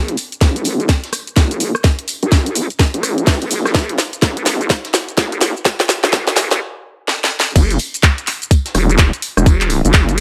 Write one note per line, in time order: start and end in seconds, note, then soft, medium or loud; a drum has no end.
0.00 0.16 F#1 loud
0.08 closed hi-hat medium
0.17 open hi-hat loud
0.17 tambourine medium
0.17 shaker medium
0.32 closed hi-hat soft
0.32 shaker soft
0.41 0.88 A1 loud
0.41 kick loud
0.41 snare soft
0.41 snare loud
0.41 closed hi-hat medium
0.41 tambourine medium
0.41 shaker soft
0.56 closed hi-hat medium
0.56 shaker soft
0.64 open hi-hat loud
0.64 tambourine medium
0.64 shaker medium
0.80 closed hi-hat soft
0.80 shaker soft
0.89 kick loud
0.89 snare medium
0.89 closed hi-hat medium
0.89 tambourine medium
0.89 shaker soft
1.04 snare soft
1.04 closed hi-hat medium
1.13 cross-stick medium
1.13 open hi-hat loud
1.13 tambourine medium
1.13 shaker medium
1.27 closed hi-hat soft
1.27 shaker soft
1.36 1.73 F#1 loud
1.36 kick loud
1.36 snare medium
1.36 snare loud
1.36 closed hi-hat medium
1.36 tambourine medium
1.36 shaker soft
1.51 closed hi-hat medium
1.51 shaker soft
1.60 open hi-hat loud
1.60 tambourine medium
1.60 shaker medium
1.75 cross-stick medium
1.75 shaker soft
1.84 kick loud
1.84 snare medium
1.84 closed hi-hat medium
1.84 tambourine medium
1.84 shaker soft
1.99 closed hi-hat medium
2.08 open hi-hat loud
2.08 tambourine medium
2.08 shaker medium
2.23 2.68 F#2 medium
2.23 closed hi-hat soft
2.23 shaker soft
2.32 kick loud
2.32 snare loud
2.32 snare medium
2.32 closed hi-hat medium
2.32 tambourine medium
2.32 shaker soft
2.46 closed hi-hat medium
2.46 shaker soft
2.55 open hi-hat loud
2.55 tambourine medium
2.55 shaker medium
2.70 closed hi-hat soft
2.70 shaker soft
2.79 kick loud
2.79 snare medium
2.79 closed hi-hat medium
2.79 tambourine medium
2.79 shaker soft
2.94 3.39 A1 loud
2.94 closed hi-hat medium
2.94 shaker soft
3.03 cross-stick medium
3.03 open hi-hat loud
3.03 tambourine medium
3.03 shaker medium
3.18 closed hi-hat soft
3.18 shaker soft
3.27 kick loud
3.27 snare medium
3.27 snare loud
3.27 closed hi-hat medium
3.27 open hi-hat medium
3.27 shaker soft
3.42 3.49 G#1 loud
3.42 closed hi-hat medium
3.42 shaker soft
3.51 3.73 F#1 medium
3.51 open hi-hat loud
3.51 tambourine medium
3.51 shaker medium
3.65 cross-stick medium
3.65 snare medium
3.65 shaker soft
3.75 3.97 F#1 loud
3.75 kick loud
3.75 snare medium
3.75 closed hi-hat medium
3.75 tambourine medium
3.75 shaker soft
3.89 closed hi-hat soft
3.98 snare medium
3.98 open hi-hat loud
3.98 tambourine medium
3.98 shaker medium
4.13 closed hi-hat soft
4.13 shaker soft
4.22 4.68 A1 loud
4.22 kick loud
4.22 snare medium
4.22 snare loud
4.22 closed hi-hat medium
4.22 tambourine medium
4.22 shaker soft
4.37 closed hi-hat medium
4.37 shaker soft
4.46 snare medium
4.46 open hi-hat loud
4.46 tambourine medium
4.46 shaker medium
4.61 closed hi-hat soft
4.61 shaker soft
4.69 kick loud
4.69 snare medium
4.69 closed hi-hat medium
4.69 tambourine medium
4.69 shaker soft
4.84 snare medium
4.84 closed hi-hat medium
4.94 snare medium
4.94 open hi-hat loud
4.94 tambourine medium
4.94 shaker medium
5.09 closed hi-hat soft
5.09 shaker soft
5.17 5.54 F#1 loud
5.17 kick loud
5.17 snare medium
5.17 snare loud
5.17 closed hi-hat medium
5.17 tambourine medium
5.17 shaker soft
5.32 closed hi-hat medium
5.32 shaker soft
5.41 snare medium
5.41 open hi-hat loud
5.41 tambourine medium
5.41 shaker medium
5.57 shaker soft
5.65 kick loud
5.65 snare loud
5.65 closed hi-hat medium
5.65 tambourine medium
5.65 shaker soft
5.80 snare medium
5.80 closed hi-hat medium
5.89 snare medium
5.89 open hi-hat loud
5.89 tambourine medium
5.89 shaker medium
6.04 6.49 F#2 medium
6.04 snare medium
6.04 closed hi-hat soft
6.04 shaker soft
6.12 kick loud
6.12 snare loud
6.12 closed hi-hat medium
6.12 tambourine medium
6.12 shaker soft
6.27 snare medium
6.27 closed hi-hat soft
6.27 shaker soft
6.36 snare loud
6.36 open hi-hat loud
6.36 tambourine medium
6.36 shaker medium
6.51 6.60 A1 loud
6.51 snare medium
6.51 closed hi-hat soft
6.51 shaker soft
7.08 snare medium
7.24 snare medium
7.40 snare loud
7.56 7.78 F#1 loud
7.56 kick loud
7.56 closed hi-hat medium
7.56 crash loud
7.56 tambourine medium
7.56 shaker medium
7.70 closed hi-hat medium
7.70 shaker soft
7.79 open hi-hat loud
7.79 tambourine medium
7.94 closed hi-hat soft
7.94 shaker medium
8.03 kick loud
8.03 snare loud
8.03 clap loud
8.03 closed hi-hat medium
8.03 tambourine medium
8.03 shaker medium
8.18 closed hi-hat medium
8.18 shaker soft
8.27 clap soft
8.27 open hi-hat loud
8.27 tambourine medium
8.42 closed hi-hat soft
8.42 shaker medium
8.51 kick loud
8.51 closed hi-hat medium
8.51 tambourine medium
8.51 shaker medium
8.65 snare soft
8.65 closed hi-hat medium
8.65 shaker soft
8.74 9.11 E1 loud
8.74 cross-stick medium
8.74 open hi-hat loud
8.74 tambourine medium
8.90 closed hi-hat soft
8.90 shaker medium
8.98 kick loud
8.98 snare loud
8.98 clap loud
8.98 closed hi-hat medium
8.98 tambourine medium
8.98 shaker medium
9.13 closed hi-hat medium
9.13 shaker soft
9.22 open hi-hat loud
9.22 tambourine medium
9.37 9.82 E1 loud
9.37 cross-stick medium
9.37 shaker medium
9.46 kick loud
9.46 closed hi-hat medium
9.46 tambourine medium
9.46 shaker medium
9.61 clap soft
9.61 closed hi-hat medium
9.61 shaker soft
9.70 open hi-hat loud
9.70 tambourine medium
9.85 10.20 F#1 medium
9.85 closed hi-hat soft
9.85 shaker medium
9.93 kick loud
9.93 snare loud
9.93 clap loud
9.93 closed hi-hat medium
9.93 tambourine medium
9.93 shaker medium
10.09 closed hi-hat medium
10.09 shaker soft